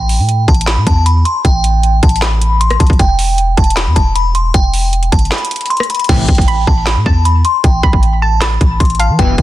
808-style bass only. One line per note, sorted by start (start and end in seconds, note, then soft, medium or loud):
0.00 0.20 A1 loud
0.19 0.46 A2 loud
0.48 0.78 A1 loud
0.77 0.86 A2 loud
0.87 1.24 E2 loud
1.45 2.00 A1 loud
2.03 2.77 A1 loud
2.80 2.89 A1 loud
2.90 2.99 A1 loud
2.99 3.55 E1 loud
3.58 3.88 E1 loud
3.87 3.96 E2 loud
3.96 4.52 E1 loud
4.54 5.10 E1 loud
5.12 5.31 G1 loud
6.09 6.28 A1 loud
6.28 6.66 A1 loud
6.67 6.98 A1 loud
6.96 7.05 A2 loud
7.06 7.43 E2 loud
7.64 7.83 A1 loud
7.83 8.58 A1 loud
8.61 8.79 A1 loud
8.80 9.11 A1 loud
9.09 9.18 E3 loud
9.19 9.37 E1 loud
9.38 9.42 E1 loud